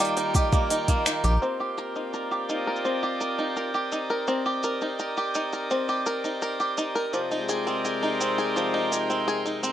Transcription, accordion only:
0.00 1.42 D#3 medium
0.00 2.79 A#3 medium
0.00 3.70 F4 medium
0.00 9.42 G5 medium
1.42 8.87 C4 medium
2.10 8.98 D5 medium
2.54 8.93 D#5 medium
7.13 9.72 C3 medium
7.38 9.72 G#3 medium
7.53 9.72 C5 medium
7.63 9.72 A#4 medium
8.00 9.72 D#4 medium

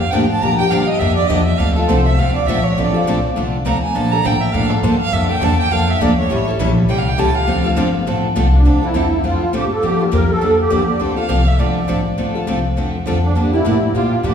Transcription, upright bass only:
0.00 0.12 G2 medium
0.13 0.41 A2 medium
0.42 0.58 A#2 medium
0.59 muted upright bass stroke soft
0.71 1.00 G2 loud
1.00 1.29 F2 loud
1.29 1.58 E2 medium
1.59 1.87 D2 medium
1.88 2.17 C2 loud
2.17 2.47 D2 medium
2.47 2.76 A#1 medium
2.77 3.05 A1 medium
3.06 3.23 A#1 loud
3.24 muted upright bass stroke soft
3.36 3.65 C2 medium
3.65 3.94 D2 medium
3.95 4.23 A#1 medium
4.25 4.53 A1 loud
4.54 4.82 A2 loud
4.82 5.11 G2 medium
5.12 5.40 F2 medium
5.41 5.70 E2 loud
5.71 6.00 F2 medium
6.00 6.29 D2 medium
6.30 6.59 A1 medium
6.59 6.88 A#1 loud
6.89 7.17 C2 medium
7.19 7.47 C#2 loud
7.48 7.76 D2 medium
7.77 8.06 G1 loud
8.06 8.35 A1 medium
8.36 8.64 C2 medium
8.64 8.81 D2 medium
8.83 muted upright bass stroke soft
8.95 9.23 E2 medium
9.23 9.40 F2 medium
9.41 muted upright bass stroke soft
9.53 9.82 A2 medium
9.82 10.11 G2 medium
10.12 10.28 E2 loud
10.31 muted upright bass stroke soft
10.42 10.70 F2 medium
10.72 11.00 E2 medium
11.01 11.29 D2 medium
11.29 11.58 C2 loud
11.59 11.87 G1 medium
11.88 12.17 A1 medium
12.18 12.46 D2 medium
12.47 12.76 C2 medium
12.77 13.05 E2 medium
13.06 13.35 F2 medium
13.36 13.64 G2 medium
13.64 13.93 A2 loud
13.93 14.22 A#2 medium
14.23 14.34 A2 medium

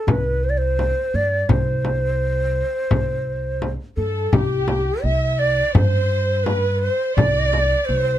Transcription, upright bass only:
0.07 0.91 C2 medium
1.14 1.42 G2 medium
1.49 2.61 C2 medium
2.91 3.75 C2 medium
3.97 4.25 G2 medium
4.33 4.89 C2 medium
5.04 5.60 C2 medium
5.75 6.87 G2 medium
7.17 7.73 C2 medium
7.89 8.19 C2 medium

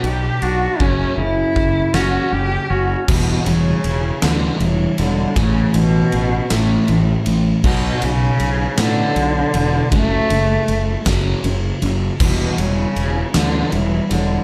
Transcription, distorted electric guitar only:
0.04 0.38 B2 medium
0.04 0.39 F#3 medium
0.80 1.16 F#2 medium
0.80 1.16 C#3 medium
0.80 1.16 F#3 loud
1.19 1.53 F#2 medium
1.19 1.53 C#3 medium
1.56 1.91 F#2 medium
1.56 1.91 C#3 medium
1.95 2.30 F#2 loud
1.95 2.31 C#3 loud
1.95 2.31 F#3 loud
2.33 2.67 F#2 medium
2.33 2.67 C#3 loud
3.09 3.44 E3 loud
3.09 3.45 G3 loud
3.09 3.45 B3 medium
3.47 3.81 E3 medium
3.47 3.81 G3 medium
4.22 4.58 E3 loud
4.22 4.58 G3 loud
4.22 4.59 B3 loud
4.61 4.95 E3 medium
4.61 4.95 G3 loud
5.00 5.33 E3 medium
5.00 5.33 G3 medium
5.37 5.72 A2 loud
5.37 5.72 E3 loud
5.37 5.73 A3 loud
5.75 6.09 A2 medium
5.75 6.09 E3 medium
6.51 6.86 A2 loud
6.51 6.86 E3 loud
6.51 6.87 A3 loud
6.89 7.23 A2 medium
6.89 7.23 E3 loud
7.27 7.61 A2 medium
7.27 7.61 E3 medium
7.64 8.00 B2 loud
7.64 8.00 F#3 loud
7.64 8.01 B3 loud
8.02 8.36 B2 medium
8.02 8.37 F#3 loud
8.78 9.14 B2 loud
8.78 9.14 F#3 loud
8.78 9.14 B3 loud
9.16 9.50 B2 medium
9.16 9.50 F#3 medium
9.54 9.88 B2 medium
9.54 9.88 F#3 medium
9.92 10.28 F#2 medium
9.92 10.28 C#3 loud
9.92 10.28 F#3 loud
10.31 10.65 F#2 medium
10.31 10.65 C#3 medium
11.06 11.42 F#2 medium
11.06 11.42 C#3 loud
11.06 11.42 F#3 loud
11.45 11.79 F#2 medium
11.45 11.79 C#3 medium
11.82 12.16 F#2 medium
11.82 12.17 C#3 loud
12.20 12.56 E3 loud
12.20 12.56 G3 medium
12.20 12.56 B3 loud
12.58 12.93 E3 medium
12.58 12.93 G3 medium
13.34 13.70 E3 loud
13.34 13.70 G3 loud
13.34 13.70 B3 loud
13.72 14.07 E3 medium
13.72 14.07 G3 loud
14.10 14.44 E3 medium
14.10 14.44 G3 loud

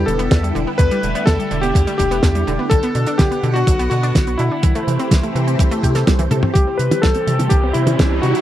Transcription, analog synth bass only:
0.07 0.28 E1 medium
0.31 0.52 E2 medium
0.55 0.66 E1 loud
0.79 0.90 E2 loud
1.03 1.14 E1 medium
1.27 1.38 E2 loud
1.51 1.72 E1 medium
1.75 1.86 E2 medium
1.99 2.20 E1 medium
2.23 2.44 E2 medium
2.47 2.58 E1 medium
2.71 2.82 B1 medium
2.95 3.06 B2 medium
3.19 3.30 B1 loud
3.43 3.64 B2 medium
3.67 3.88 B1 loud
3.91 4.12 B2 medium
4.15 4.36 B1 medium
4.39 4.50 B2 loud
4.63 4.74 C2 medium
4.87 4.98 C3 medium
5.11 5.22 C2 loud
5.35 5.56 C3 medium
5.59 5.70 C2 medium
5.83 6.04 C3 medium
6.07 6.28 C2 loud
6.31 6.42 C3 loud
6.55 6.66 C2 loud
6.79 6.90 C3 medium
7.03 7.14 C2 loud
7.27 7.48 C3 medium
7.51 7.72 C2 loud
7.75 7.96 C3 medium
7.99 8.20 C2 medium
8.23 8.34 C3 loud

